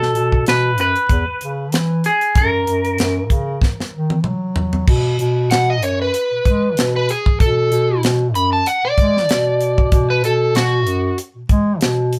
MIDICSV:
0, 0, Header, 1, 5, 480
1, 0, Start_track
1, 0, Tempo, 630252
1, 1797, Time_signature, 4, 2, 24, 8
1, 9285, End_track
2, 0, Start_track
2, 0, Title_t, "Electric slide guitar"
2, 0, Program_c, 0, 29
2, 4199, Note_on_c, 0, 78, 89
2, 4328, Note_off_c, 0, 78, 0
2, 4340, Note_on_c, 0, 75, 70
2, 4440, Note_off_c, 0, 75, 0
2, 4441, Note_on_c, 0, 73, 78
2, 4569, Note_off_c, 0, 73, 0
2, 4582, Note_on_c, 0, 71, 80
2, 5275, Note_off_c, 0, 71, 0
2, 5302, Note_on_c, 0, 71, 78
2, 5401, Note_off_c, 0, 71, 0
2, 5409, Note_on_c, 0, 68, 72
2, 5637, Note_off_c, 0, 68, 0
2, 5645, Note_on_c, 0, 69, 92
2, 6107, Note_off_c, 0, 69, 0
2, 6363, Note_on_c, 0, 83, 86
2, 6490, Note_off_c, 0, 83, 0
2, 6495, Note_on_c, 0, 81, 77
2, 6597, Note_off_c, 0, 81, 0
2, 6603, Note_on_c, 0, 78, 93
2, 6730, Note_off_c, 0, 78, 0
2, 6738, Note_on_c, 0, 74, 91
2, 7666, Note_off_c, 0, 74, 0
2, 7693, Note_on_c, 0, 71, 82
2, 7796, Note_off_c, 0, 71, 0
2, 7808, Note_on_c, 0, 69, 76
2, 8035, Note_off_c, 0, 69, 0
2, 8040, Note_on_c, 0, 66, 104
2, 8504, Note_off_c, 0, 66, 0
2, 9285, End_track
3, 0, Start_track
3, 0, Title_t, "Clean electric guitar"
3, 0, Program_c, 1, 27
3, 0, Note_on_c, 1, 69, 88
3, 338, Note_off_c, 1, 69, 0
3, 371, Note_on_c, 1, 71, 97
3, 606, Note_off_c, 1, 71, 0
3, 615, Note_on_c, 1, 71, 86
3, 1569, Note_on_c, 1, 68, 69
3, 1595, Note_off_c, 1, 71, 0
3, 1810, Note_off_c, 1, 68, 0
3, 1810, Note_on_c, 1, 70, 82
3, 3214, Note_off_c, 1, 70, 0
3, 9285, End_track
4, 0, Start_track
4, 0, Title_t, "Bass clarinet"
4, 0, Program_c, 2, 71
4, 0, Note_on_c, 2, 47, 78
4, 91, Note_off_c, 2, 47, 0
4, 114, Note_on_c, 2, 47, 79
4, 331, Note_off_c, 2, 47, 0
4, 354, Note_on_c, 2, 47, 95
4, 594, Note_on_c, 2, 42, 83
4, 605, Note_off_c, 2, 47, 0
4, 715, Note_off_c, 2, 42, 0
4, 832, Note_on_c, 2, 40, 90
4, 954, Note_off_c, 2, 40, 0
4, 969, Note_on_c, 2, 40, 35
4, 1023, Note_off_c, 2, 40, 0
4, 1074, Note_on_c, 2, 49, 77
4, 1314, Note_on_c, 2, 52, 82
4, 1326, Note_off_c, 2, 49, 0
4, 1567, Note_off_c, 2, 52, 0
4, 1794, Note_on_c, 2, 42, 80
4, 2012, Note_off_c, 2, 42, 0
4, 2034, Note_on_c, 2, 42, 77
4, 2252, Note_off_c, 2, 42, 0
4, 2274, Note_on_c, 2, 42, 86
4, 2515, Note_on_c, 2, 49, 84
4, 2526, Note_off_c, 2, 42, 0
4, 2733, Note_off_c, 2, 49, 0
4, 2887, Note_on_c, 2, 42, 34
4, 2941, Note_off_c, 2, 42, 0
4, 2995, Note_on_c, 2, 51, 70
4, 3234, Note_on_c, 2, 54, 79
4, 3246, Note_off_c, 2, 51, 0
4, 3686, Note_off_c, 2, 54, 0
4, 3714, Note_on_c, 2, 47, 89
4, 3932, Note_off_c, 2, 47, 0
4, 3955, Note_on_c, 2, 47, 89
4, 4172, Note_off_c, 2, 47, 0
4, 4194, Note_on_c, 2, 47, 99
4, 4437, Note_on_c, 2, 42, 84
4, 4448, Note_off_c, 2, 47, 0
4, 4654, Note_off_c, 2, 42, 0
4, 4810, Note_on_c, 2, 47, 35
4, 4864, Note_off_c, 2, 47, 0
4, 4916, Note_on_c, 2, 56, 78
4, 5154, Note_on_c, 2, 47, 87
4, 5166, Note_off_c, 2, 56, 0
4, 5407, Note_off_c, 2, 47, 0
4, 5637, Note_on_c, 2, 47, 90
4, 5854, Note_off_c, 2, 47, 0
4, 5877, Note_on_c, 2, 47, 88
4, 6094, Note_off_c, 2, 47, 0
4, 6115, Note_on_c, 2, 47, 94
4, 6358, Note_on_c, 2, 42, 86
4, 6369, Note_off_c, 2, 47, 0
4, 6574, Note_off_c, 2, 42, 0
4, 6731, Note_on_c, 2, 47, 38
4, 6785, Note_off_c, 2, 47, 0
4, 6838, Note_on_c, 2, 56, 80
4, 7080, Note_on_c, 2, 47, 84
4, 7091, Note_off_c, 2, 56, 0
4, 7528, Note_off_c, 2, 47, 0
4, 7555, Note_on_c, 2, 47, 93
4, 7772, Note_off_c, 2, 47, 0
4, 7798, Note_on_c, 2, 47, 87
4, 8014, Note_off_c, 2, 47, 0
4, 8035, Note_on_c, 2, 47, 95
4, 8274, Note_on_c, 2, 42, 86
4, 8286, Note_off_c, 2, 47, 0
4, 8492, Note_off_c, 2, 42, 0
4, 8646, Note_on_c, 2, 47, 36
4, 8701, Note_off_c, 2, 47, 0
4, 8755, Note_on_c, 2, 56, 87
4, 8991, Note_on_c, 2, 47, 97
4, 9003, Note_off_c, 2, 56, 0
4, 9245, Note_off_c, 2, 47, 0
4, 9285, End_track
5, 0, Start_track
5, 0, Title_t, "Drums"
5, 19, Note_on_c, 9, 38, 32
5, 95, Note_off_c, 9, 38, 0
5, 115, Note_on_c, 9, 42, 52
5, 191, Note_off_c, 9, 42, 0
5, 247, Note_on_c, 9, 36, 62
5, 323, Note_off_c, 9, 36, 0
5, 354, Note_on_c, 9, 42, 70
5, 366, Note_on_c, 9, 38, 97
5, 430, Note_off_c, 9, 42, 0
5, 442, Note_off_c, 9, 38, 0
5, 592, Note_on_c, 9, 42, 53
5, 669, Note_off_c, 9, 42, 0
5, 728, Note_on_c, 9, 42, 32
5, 804, Note_off_c, 9, 42, 0
5, 834, Note_on_c, 9, 36, 77
5, 834, Note_on_c, 9, 42, 76
5, 910, Note_off_c, 9, 36, 0
5, 910, Note_off_c, 9, 42, 0
5, 1073, Note_on_c, 9, 42, 55
5, 1149, Note_off_c, 9, 42, 0
5, 1313, Note_on_c, 9, 42, 74
5, 1325, Note_on_c, 9, 38, 99
5, 1389, Note_off_c, 9, 42, 0
5, 1401, Note_off_c, 9, 38, 0
5, 1554, Note_on_c, 9, 42, 58
5, 1630, Note_off_c, 9, 42, 0
5, 1685, Note_on_c, 9, 42, 34
5, 1762, Note_off_c, 9, 42, 0
5, 1793, Note_on_c, 9, 42, 77
5, 1794, Note_on_c, 9, 36, 96
5, 1869, Note_off_c, 9, 42, 0
5, 1870, Note_off_c, 9, 36, 0
5, 2036, Note_on_c, 9, 42, 55
5, 2112, Note_off_c, 9, 42, 0
5, 2167, Note_on_c, 9, 42, 35
5, 2244, Note_off_c, 9, 42, 0
5, 2273, Note_on_c, 9, 42, 76
5, 2285, Note_on_c, 9, 38, 101
5, 2349, Note_off_c, 9, 42, 0
5, 2361, Note_off_c, 9, 38, 0
5, 2514, Note_on_c, 9, 36, 72
5, 2514, Note_on_c, 9, 42, 59
5, 2590, Note_off_c, 9, 36, 0
5, 2590, Note_off_c, 9, 42, 0
5, 2753, Note_on_c, 9, 36, 76
5, 2764, Note_on_c, 9, 38, 55
5, 2829, Note_off_c, 9, 36, 0
5, 2840, Note_off_c, 9, 38, 0
5, 2897, Note_on_c, 9, 38, 48
5, 2974, Note_off_c, 9, 38, 0
5, 3124, Note_on_c, 9, 48, 61
5, 3200, Note_off_c, 9, 48, 0
5, 3229, Note_on_c, 9, 47, 68
5, 3305, Note_off_c, 9, 47, 0
5, 3470, Note_on_c, 9, 43, 82
5, 3547, Note_off_c, 9, 43, 0
5, 3601, Note_on_c, 9, 43, 69
5, 3677, Note_off_c, 9, 43, 0
5, 3712, Note_on_c, 9, 49, 91
5, 3713, Note_on_c, 9, 36, 97
5, 3789, Note_off_c, 9, 36, 0
5, 3789, Note_off_c, 9, 49, 0
5, 3953, Note_on_c, 9, 42, 52
5, 4029, Note_off_c, 9, 42, 0
5, 4194, Note_on_c, 9, 42, 76
5, 4206, Note_on_c, 9, 38, 101
5, 4270, Note_off_c, 9, 42, 0
5, 4282, Note_off_c, 9, 38, 0
5, 4436, Note_on_c, 9, 42, 58
5, 4512, Note_off_c, 9, 42, 0
5, 4676, Note_on_c, 9, 42, 78
5, 4752, Note_off_c, 9, 42, 0
5, 4916, Note_on_c, 9, 36, 79
5, 4916, Note_on_c, 9, 42, 57
5, 4992, Note_off_c, 9, 36, 0
5, 4992, Note_off_c, 9, 42, 0
5, 5157, Note_on_c, 9, 42, 75
5, 5170, Note_on_c, 9, 38, 107
5, 5233, Note_off_c, 9, 42, 0
5, 5246, Note_off_c, 9, 38, 0
5, 5400, Note_on_c, 9, 42, 59
5, 5476, Note_off_c, 9, 42, 0
5, 5530, Note_on_c, 9, 36, 80
5, 5607, Note_off_c, 9, 36, 0
5, 5637, Note_on_c, 9, 36, 94
5, 5637, Note_on_c, 9, 42, 75
5, 5713, Note_off_c, 9, 36, 0
5, 5713, Note_off_c, 9, 42, 0
5, 5878, Note_on_c, 9, 42, 64
5, 5954, Note_off_c, 9, 42, 0
5, 6117, Note_on_c, 9, 42, 80
5, 6129, Note_on_c, 9, 38, 104
5, 6193, Note_off_c, 9, 42, 0
5, 6205, Note_off_c, 9, 38, 0
5, 6362, Note_on_c, 9, 42, 64
5, 6438, Note_off_c, 9, 42, 0
5, 6598, Note_on_c, 9, 42, 89
5, 6674, Note_off_c, 9, 42, 0
5, 6837, Note_on_c, 9, 36, 78
5, 6837, Note_on_c, 9, 42, 62
5, 6913, Note_off_c, 9, 36, 0
5, 6913, Note_off_c, 9, 42, 0
5, 6984, Note_on_c, 9, 38, 35
5, 7060, Note_off_c, 9, 38, 0
5, 7076, Note_on_c, 9, 42, 80
5, 7088, Note_on_c, 9, 38, 104
5, 7152, Note_off_c, 9, 42, 0
5, 7164, Note_off_c, 9, 38, 0
5, 7316, Note_on_c, 9, 42, 60
5, 7392, Note_off_c, 9, 42, 0
5, 7449, Note_on_c, 9, 36, 77
5, 7525, Note_off_c, 9, 36, 0
5, 7554, Note_on_c, 9, 42, 77
5, 7556, Note_on_c, 9, 36, 97
5, 7630, Note_off_c, 9, 42, 0
5, 7632, Note_off_c, 9, 36, 0
5, 7797, Note_on_c, 9, 42, 56
5, 7874, Note_off_c, 9, 42, 0
5, 8035, Note_on_c, 9, 42, 76
5, 8048, Note_on_c, 9, 38, 105
5, 8112, Note_off_c, 9, 42, 0
5, 8124, Note_off_c, 9, 38, 0
5, 8276, Note_on_c, 9, 42, 58
5, 8352, Note_off_c, 9, 42, 0
5, 8516, Note_on_c, 9, 42, 77
5, 8592, Note_off_c, 9, 42, 0
5, 8753, Note_on_c, 9, 42, 60
5, 8754, Note_on_c, 9, 36, 83
5, 8830, Note_off_c, 9, 36, 0
5, 8830, Note_off_c, 9, 42, 0
5, 8993, Note_on_c, 9, 42, 81
5, 9006, Note_on_c, 9, 38, 103
5, 9070, Note_off_c, 9, 42, 0
5, 9082, Note_off_c, 9, 38, 0
5, 9235, Note_on_c, 9, 42, 58
5, 9285, Note_off_c, 9, 42, 0
5, 9285, End_track
0, 0, End_of_file